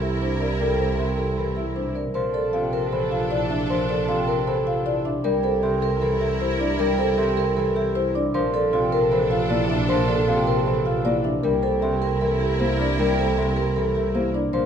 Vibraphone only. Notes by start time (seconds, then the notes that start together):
0.02 E4
0.21 D4
0.41 A#4
0.60 A4
0.79 G4
0.98 A#4
1.18 A4
1.37 G4
1.57 E4
1.76 D4
1.96 A#4
2.15 A#4
2.34 A4
2.54 F4
2.73 A#4
2.92 A4
3.12 F4
3.31 E4
3.50 D4
3.70 A#4
3.89 A4
4.08 F4
4.28 A#4
4.47 A4
4.67 F4
4.86 E4
5.05 D4
5.25 A#4
5.44 A4
5.63 G4
5.82 A#4
6.02 A4
6.21 G4
6.40 E4
6.59 D4
6.79 A#4
6.99 A4
7.18 G4
7.37 A#4
7.56 A4
7.76 G4
7.95 E4
8.15 D4
8.34 A#4
8.54 A4
8.73 F4
8.92 A#4
9.12 A4
9.31 F4
9.50 E4
9.70 D4
9.89 A#4
10.08 A4
10.28 F4
10.47 A#4
10.67 A4
10.86 F4
11.05 E4
11.25 D4
11.44 A#4
11.63 A4
11.82 G4
12.02 A#4
12.21 A4
12.40 G4
12.60 E4
12.79 D4
12.98 A#4
13.18 A4
13.37 G4
13.57 A#4
13.76 A4
13.96 G4
14.15 E4
14.34 D4
14.54 A#4